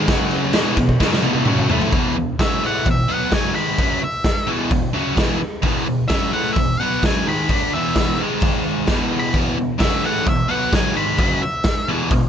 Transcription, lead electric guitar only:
2.41 2.63 E5 medium
2.66 2.87 F#5 medium
2.91 3.14 E5 medium
3.14 3.34 F#5 medium
3.34 3.55 G#5 medium
3.55 4.00 B5 loud
4.04 4.48 E5 medium
6.08 6.32 E5 loud
6.33 6.53 F#5 medium
6.53 6.80 E5 medium
6.80 7.02 F#5 loud
7.06 7.27 G#5 loud
7.29 7.72 B5 loud
7.73 8.18 E5 loud
9.20 9.34 B5 loud
9.80 10.03 E5 loud
10.06 10.27 F#5 medium
10.29 10.51 E5 medium
10.51 10.73 F#5 medium
10.75 10.96 G#5 medium
10.97 11.41 B5 medium
11.42 11.87 E5 medium

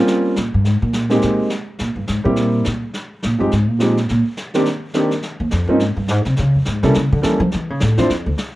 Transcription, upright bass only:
0.38 0.53 A#2 medium
0.54 0.66 G2 medium
0.66 0.82 G#2 medium
0.82 1.19 A#2 medium
1.24 1.39 A#2 medium
1.81 1.95 A#2 medium
1.96 2.07 G2 medium
2.09 2.25 G#2 medium
2.25 2.62 A#2 medium
2.67 2.83 A#2 medium
3.25 3.40 A#2 medium
3.40 3.51 G2 medium
3.53 3.69 G#2 medium
3.69 4.09 A#2 medium
4.11 4.20 A#2 medium
5.40 5.51 D#2 medium
5.53 5.67 F2 medium
5.67 5.81 G2 medium
5.81 5.96 G#2 medium
5.97 6.10 G2 medium
6.10 6.25 G#2 medium
6.26 6.37 C3 medium
6.39 6.55 C#3 medium
6.55 6.66 F2 soft
6.68 6.83 G#2 medium
6.83 6.94 C3 medium
6.96 7.12 C#3 medium
7.12 7.23 D3 medium
7.24 7.39 E3 medium
7.40 7.51 F3 loud
7.54 7.70 E3 medium
7.70 7.81 C#3 loud
7.82 7.98 A2 medium
7.98 8.09 E2 medium
8.10 8.26 F2 medium
8.26 8.33 D2 medium

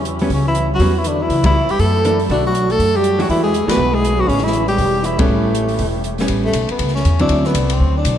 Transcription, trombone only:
0.32 0.45 C#3 medium
0.47 0.69 E3 medium
0.73 0.97 F#3 medium
0.95 1.07 E3 medium
1.06 1.24 D3 medium
1.23 1.45 E3 medium
1.45 1.73 E3 medium
1.72 1.81 G3 medium
1.79 2.19 A3 medium
2.31 2.44 D3 medium
2.46 2.73 F#3 medium
2.72 2.97 A3 medium
2.96 3.21 G3 medium
3.20 3.29 F#3 medium
3.30 3.43 E3 medium
3.45 3.69 G#3 medium
3.68 3.94 B3 medium
3.93 4.19 G#3 medium
4.17 4.29 F#3 medium
4.28 4.44 C#3 medium
4.42 4.66 E3 medium
4.66 5.01 G3 medium
5.00 5.04 D#3 soft
5.00 5.20 E3 medium
5.19 6.05 A2 medium

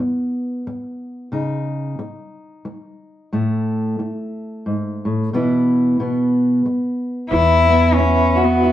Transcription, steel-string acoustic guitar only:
0.00 1.29 B3 soft
0.67 muted steel-string acoustic guitar stroke soft
1.32 1.98 C#3 medium
1.32 3.29 D#4 soft
1.99 muted steel-string acoustic guitar stroke soft
2.65 muted steel-string acoustic guitar stroke soft
3.33 3.99 A2 medium
3.33 5.29 A3 soft
3.99 muted steel-string acoustic guitar stroke soft
4.66 5.04 G#2 soft
5.05 5.32 A2 soft
5.33 5.96 B2 medium
5.33 5.96 E3 soft
5.33 5.96 B3 soft
5.33 6.00 E4 soft
6.00 6.65 B2 medium
6.00 7.28 B3 soft
6.66 muted steel-string acoustic guitar stroke soft
7.31 8.72 E2 medium
7.31 7.68 B3 soft
7.70 7.97 B3 soft
7.99 8.72 B3 soft
8.37 8.63 F#4 medium
8.64 8.72 F#4 medium

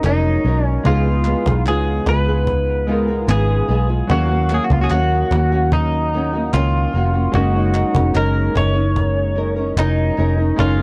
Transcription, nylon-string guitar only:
0.04 0.44 F#3 medium
0.04 0.44 C#4 medium
0.04 0.45 D#4 medium
0.04 0.46 A#4 medium
0.45 0.85 F#3 medium
0.45 0.85 C#4 medium
0.45 0.86 D#4 medium
0.45 0.86 A#4 medium
0.85 1.05 C#3 medium
0.85 1.06 G#3 medium
0.85 1.06 B3 medium
0.85 1.06 F4 medium
0.85 1.05 G#4 medium
1.06 1.26 B3 soft
1.06 1.27 F4 medium
1.06 1.26 G#4 medium
1.25 1.46 G#3 medium
1.25 1.46 B3 medium
1.25 1.46 F4 medium
1.25 1.45 G#4 medium
1.46 1.67 B3 soft
1.46 1.67 F4 soft
1.46 1.66 G#4 medium
1.66 2.07 C#3 medium
1.66 2.05 G#3 medium
1.66 2.07 B3 medium
1.66 2.08 F4 medium
1.66 2.08 G#4 medium
2.06 2.27 G#3 medium
2.06 2.28 B3 medium
2.06 2.28 F4 medium
2.10 2.27 G#4 medium
2.29 2.88 B3 soft
2.29 2.89 F4 medium
2.29 2.89 G#4 medium
2.88 3.08 G#3 medium
2.88 3.09 B3 medium
2.88 3.09 F4 medium
2.88 3.07 G#4 medium
3.08 3.27 B3 soft
3.08 3.27 F4 medium
3.08 3.28 G#4 medium
3.27 3.68 C#3 medium
3.27 3.67 G#3 medium
3.27 3.67 B3 medium
3.27 3.69 F4 medium
3.27 3.69 G#4 medium
3.68 3.89 G#3 medium
3.68 3.89 B3 medium
3.68 3.88 F4 medium
3.68 3.87 G#4 medium
3.88 4.10 B3 soft
3.88 4.10 F4 soft
3.88 4.09 G#4 soft
4.09 4.30 D#3 medium
4.09 4.30 A#3 medium
4.09 4.30 C#4 medium
4.09 4.27 F#4 medium
4.29 4.51 C#4 soft
4.29 4.49 F#4 medium
4.33 4.51 A#3 soft
4.50 4.71 D#3 medium
4.50 4.71 A#3 medium
4.50 4.71 C#4 medium
4.50 4.69 F#4 medium
4.70 4.92 A#3 soft
4.70 4.91 C#4 medium
4.70 4.91 F#4 medium
4.91 5.30 D#3 medium
4.91 5.32 A#3 medium
4.91 5.33 C#4 medium
4.91 5.33 F#4 medium
5.32 5.52 D#3 medium
5.32 5.53 A#3 medium
5.32 5.53 C#4 medium
5.32 5.51 F#4 medium
5.52 6.13 A#3 medium
5.52 6.13 C#4 medium
5.52 6.13 F#4 medium
6.14 6.33 D#3 medium
6.14 6.34 A#3 medium
6.14 6.33 C#4 medium
6.14 6.31 F#4 medium
6.33 6.53 A#3 soft
6.33 6.54 C#4 medium
6.33 6.53 F#4 medium
6.53 6.92 D#3 medium
6.53 6.93 A#3 medium
6.53 6.94 C#4 medium
6.93 7.14 D#3 medium
6.93 7.14 A#3 medium
6.93 7.14 C#4 medium
6.93 7.12 F#4 medium
7.14 7.35 A#3 soft
7.14 7.35 C#4 soft
7.14 7.34 F#4 soft
7.35 7.55 F#3 medium
7.35 7.55 C#4 medium
7.35 7.55 D#4 medium
7.35 7.53 A#4 medium
7.54 7.73 C#4 soft
7.54 7.74 D#4 medium
7.54 7.75 A#4 medium
7.73 7.94 F#3 medium
7.73 7.95 C#4 medium
7.73 7.94 D#4 medium
7.73 7.92 A#4 medium
7.94 8.13 C#4 medium
7.94 8.14 D#4 soft
7.94 8.14 A#4 medium
8.14 8.53 F#3 medium
8.14 8.53 C#4 medium
8.14 8.55 D#4 loud
8.14 8.56 A#4 medium
8.54 8.75 F#3 medium
8.54 8.75 C#4 medium
8.54 8.73 D#4 medium
8.54 8.72 A#4 medium
8.73 9.35 C#4 soft
8.73 9.36 D#4 medium
8.73 9.36 A#4 medium
9.35 9.56 F#3 soft
9.35 9.57 C#4 medium
9.35 9.57 D#4 medium
9.35 9.55 A#4 medium
9.56 9.77 C#4 soft
9.56 9.77 D#4 medium
9.56 9.77 A#4 medium
9.77 10.16 F#3 medium
9.77 10.17 C#4 medium
9.77 10.18 D#4 medium
9.77 10.18 A#4 medium
10.17 10.38 F#3 medium
10.17 10.38 C#4 medium
10.17 10.38 D#4 medium
10.17 10.37 A#4 medium
10.38 10.57 C#4 soft
10.38 10.58 D#4 soft
10.38 10.58 A#4 medium
10.58 10.78 F#3 medium
10.58 10.79 C#4 medium
10.58 10.79 D#4 medium
10.58 10.78 A#4 medium
10.79 10.82 A#4 medium

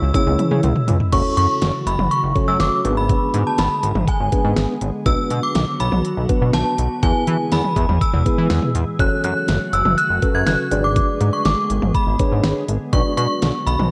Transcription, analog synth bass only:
0.02 0.12 C#2 loud
0.27 0.36 C#2 loud
0.51 0.61 C#3 loud
0.64 0.73 C#2 loud
0.88 0.98 C#2 loud
1.13 1.22 F#1 loud
1.37 1.47 F#2 medium
1.62 1.72 F#1 loud
1.87 1.96 F#1 loud
1.99 2.08 F#1 medium
2.23 2.33 F#1 medium
2.48 2.58 F#2 medium
2.60 2.70 F#1 loud
2.85 3.14 G#1 loud
3.34 3.44 G#2 loud
3.59 3.68 G#1 loud
3.83 3.93 G#1 loud
3.95 4.05 G#1 loud
4.20 4.30 G#1 medium
4.45 4.54 G#2 loud
4.57 4.67 G#1 loud
4.82 4.91 G#1 loud
5.06 5.16 B1 loud
5.31 5.40 B2 loud
5.55 5.65 B1 medium
5.80 5.90 B1 loud
5.92 6.02 B1 medium
6.17 6.27 B1 loud
6.41 6.51 B2 medium
6.54 6.63 B1 loud
6.78 6.88 B1 loud
7.03 7.13 E2 loud
7.27 7.37 E3 loud
7.52 7.62 E2 loud
7.76 7.86 E2 loud
7.89 7.99 E2 loud
8.13 8.23 E2 loud
8.38 8.48 E3 medium
8.50 8.60 E2 loud
8.75 8.85 E2 loud
8.99 9.09 F#1 loud
9.24 9.34 F#2 loud
9.49 9.58 F#1 loud
9.73 9.83 F#1 loud
9.85 9.95 F#1 loud
10.10 10.20 F#1 medium
10.35 10.44 F#2 medium
10.47 10.57 F#1 loud
10.72 11.01 G#1 loud
11.21 11.31 G#2 loud
11.45 11.55 G#1 loud
11.70 11.80 G#1 loud
11.82 11.92 G#1 loud
12.07 12.17 G#1 medium
12.32 12.41 G#2 loud
12.44 12.54 G#1 loud
12.68 12.78 G#1 loud
12.93 13.03 B1 loud
13.18 13.27 B2 loud
13.42 13.52 B1 loud
13.67 13.77 B1 loud
13.79 13.89 B1 medium

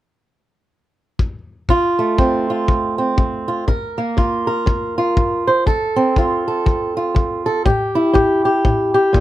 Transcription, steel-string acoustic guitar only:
1.69 2.15 D2 medium
1.69 2.50 F4 medium
1.99 3.65 A3 medium
2.18 2.64 D2 medium
2.18 2.97 C4 medium
2.50 3.48 F4 medium
2.68 3.14 D2 medium
2.98 3.65 C4 medium
3.17 3.63 D2 medium
3.48 3.68 F4 medium
3.68 4.13 G2 medium
3.68 4.46 A#4 medium
3.98 5.64 A#3 medium
4.17 4.63 G2 medium
4.17 4.97 F4 medium
4.47 5.47 A#4 medium
4.66 5.12 G2 medium
4.98 5.65 F4 medium
5.17 5.62 G2 medium
5.47 5.64 C5 medium
5.66 6.12 D2 medium
5.66 6.47 A4 medium
5.96 7.63 C4 medium
6.18 6.63 D2 medium
6.18 6.96 F4 medium
6.48 7.45 A4 medium
6.66 7.12 D2 medium
6.97 7.63 F4 medium
7.15 7.61 D2 medium
7.46 7.66 A4 medium
7.65 8.11 A2 medium
7.65 8.13 G4 medium
7.95 9.20 E4 medium
8.13 8.60 A2 medium
8.13 8.44 G4 medium
8.45 8.93 G4 soft
8.65 9.10 A2 medium
8.94 9.20 G4 medium
9.13 9.20 A#2 medium

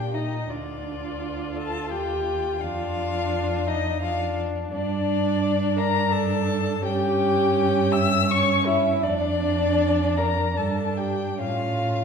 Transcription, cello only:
0.00 0.47 A#2 soft
0.52 1.93 D2 medium
1.92 2.63 D#2 medium
2.62 4.73 F2 medium
4.73 6.81 G2 medium
6.84 9.01 G2 medium
9.06 10.59 F2 medium
10.58 11.41 G2 medium
11.40 12.04 A2 medium

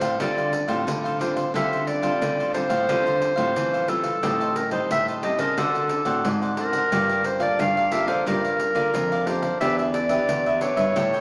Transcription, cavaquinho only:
0.01 0.19 A4 soft
0.01 0.18 C5 medium
0.01 0.18 F5 medium
0.20 0.36 D4 medium
0.20 0.36 A4 medium
0.20 0.36 C5 medium
0.20 0.36 F5 medium
0.38 0.51 A4 soft
0.38 0.51 C5 soft
0.38 0.52 F5 soft
0.52 muted cavaquinho stroke soft
0.68 1.02 A4 medium
0.68 1.02 C5 medium
0.68 1.02 F5 medium
1.04 1.18 A4 soft
1.04 1.19 C5 medium
1.04 1.20 F5 medium
1.19 1.36 D4 soft
1.19 1.36 A4 soft
1.19 1.35 C5 soft
1.19 1.34 F5 soft
1.35 1.53 A4 soft
1.35 1.53 C5 soft
1.35 1.52 F5 soft
1.54 1.70 D4 medium
1.54 1.70 A4 medium
1.54 1.71 C5 medium
1.54 1.70 F5 medium
1.72 1.86 A4 soft
1.72 1.86 C5 soft
1.72 1.87 F5 soft
1.87 muted cavaquinho stroke soft
2.02 2.37 A4 medium
2.02 2.36 C5 medium
2.02 2.36 F5 medium
2.39 2.53 A4 soft
2.39 2.53 C5 soft
2.39 2.53 F5 soft
2.53 2.70 D4 soft
2.53 2.69 A4 medium
2.53 2.69 C5 soft
2.53 2.68 F5 soft
2.69 2.87 A4 soft
2.69 2.87 C5 medium
2.69 2.86 F5 medium
2.88 3.04 D4 medium
2.88 3.04 A4 medium
2.88 3.05 C5 medium
2.88 3.04 F5 medium
3.05 3.20 A4 soft
3.05 3.20 C5 soft
3.05 3.20 F5 soft
3.21 muted cavaquinho stroke soft
3.36 3.71 A4 medium
3.36 3.70 C5 medium
3.36 3.70 F5 medium
3.73 3.88 A4 soft
3.73 3.88 C5 soft
3.73 3.88 F5 medium
3.88 4.04 D4 soft
3.88 4.04 A4 soft
3.88 4.03 C5 soft
3.88 4.02 F5 soft
4.03 4.21 A4 soft
4.03 4.21 C5 soft
4.03 4.21 F5 soft
4.22 4.39 G4 medium
4.22 4.39 C5 medium
4.22 4.39 D#5 medium
4.22 4.39 A5 medium
4.40 4.55 C5 soft
4.40 4.55 D#5 soft
4.40 4.55 A5 soft
4.55 muted cavaquinho stroke soft
4.71 5.06 C5 soft
4.71 5.05 D#5 medium
4.71 5.05 A5 medium
5.08 5.22 C5 soft
5.08 5.23 D#5 soft
5.08 5.23 A5 medium
5.23 5.39 G4 soft
5.23 5.39 C5 soft
5.23 5.38 D#5 medium
5.23 5.37 A5 medium
5.38 5.56 C5 soft
5.38 5.56 D#5 medium
5.38 5.55 A5 medium
5.57 5.73 D4 medium
5.57 5.73 C5 medium
5.57 5.74 D5 medium
5.57 5.73 F#5 medium
5.74 5.89 C5 soft
5.74 5.89 D5 soft
5.74 5.89 F#5 soft
5.90 muted cavaquinho stroke soft
6.05 6.40 C5 medium
6.05 6.39 D5 medium
6.05 6.39 F#5 medium
6.42 6.56 C5 soft
6.42 6.57 D5 medium
6.42 6.57 F#5 medium
6.57 6.73 D4 soft
6.57 6.73 C5 soft
6.57 6.72 D5 soft
6.57 6.71 F#5 soft
6.72 6.90 C5 soft
6.72 6.90 D5 soft
6.72 6.89 F#5 medium
6.92 7.08 G4 medium
6.92 7.08 A#4 medium
6.92 7.08 D5 medium
6.92 7.08 F5 medium
7.09 7.24 A#4 soft
7.09 7.24 D5 soft
7.09 7.24 F5 soft
7.25 muted cavaquinho stroke soft
7.40 7.74 A#4 medium
7.40 7.74 D5 medium
7.40 7.74 F5 medium
7.77 7.91 A#4 soft
7.77 7.92 D5 soft
7.77 7.92 F5 soft
7.92 8.08 G4 soft
7.92 8.08 A#4 medium
7.92 8.07 D5 soft
7.92 8.06 F5 soft
8.07 8.25 A#4 soft
8.07 8.24 D5 medium
8.07 8.24 F5 medium
8.26 8.42 G4 medium
8.26 8.42 A#4 medium
8.26 8.43 D5 medium
8.26 8.43 F5 medium
8.44 8.58 A#4 soft
8.44 8.59 D5 soft
8.44 8.59 F5 soft
8.59 muted cavaquinho stroke soft
8.75 9.09 A#4 medium
8.75 9.09 D5 medium
8.75 9.08 F5 medium
9.12 9.26 A#4 soft
9.12 9.27 D5 medium
9.12 9.27 F5 medium
9.27 9.43 G4 soft
9.27 9.42 A#4 soft
9.27 9.42 D5 soft
9.27 9.41 F5 soft
9.42 9.59 A#4 soft
9.42 9.59 D5 soft
9.42 9.59 F5 soft
9.61 9.77 D4 medium
9.61 9.77 G4 medium
9.61 9.77 B4 medium
9.61 9.78 E5 medium
9.79 9.93 G4 soft
9.79 9.93 B4 soft
9.79 9.93 E5 soft
9.94 muted cavaquinho stroke soft
10.10 10.44 G4 soft
10.10 10.43 B4 medium
10.10 10.43 E5 medium
10.46 10.60 G4 soft
10.46 10.61 B4 soft
10.46 10.61 E5 medium
10.61 10.77 D4 soft
10.61 10.77 G4 medium
10.61 10.76 B4 medium
10.61 10.75 E5 medium
10.76 10.94 G4 soft
10.76 10.93 B4 medium
10.76 10.93 E5 medium
10.96 11.11 E4 medium
10.96 11.12 A4 medium
10.96 11.12 C#5 medium
10.96 11.12 G5 medium
11.14 11.21 A4 soft
11.14 11.21 C#5 soft
11.14 11.21 G5 medium

